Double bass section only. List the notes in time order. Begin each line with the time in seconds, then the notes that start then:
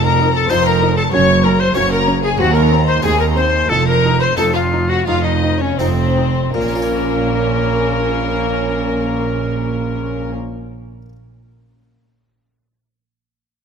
Already playing: F1
0.50 F1
1.13 F#1
1.75 F#1
2.39 D#2
3.03 D#2
3.70 F1
4.37 F1
5.07 F1
5.79 F1
6.54 A#1